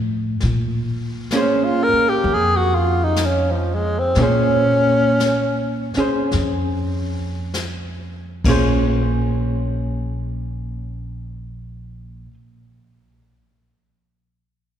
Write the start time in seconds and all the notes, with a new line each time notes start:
Already playing: A2 F3 C4 D#4 A4
0.40 A#2, brush sweep, snare
1.31 A#3 C#4, snare, hi-hat pedal
1.35 G#4 C5
1.41 C#4
1.64 F4
1.84 A#4
1.93 muted upright bass stroke
2.09 G4
2.21 F2, brush sweep
2.34 G#4
2.56 F#4
2.75 F4
3.04 D#4
3.16 snare, hi-hat pedal
3.26 C#4
3.51 F3
3.74 G#3
3.99 C4
4.15 A#2 A#3, brush sweep, snare
4.19 C#4 G#4
4.23 C5
5.20 snare, hi-hat pedal
5.94 C#4, muted upright bass stroke, snare
5.98 G#4 C5
6.31 F2, brush sweep, snare
7.54 snare, hi-hat pedal
8.44 A#1 A#3 C#4, kick, crash
8.49 G#4 C5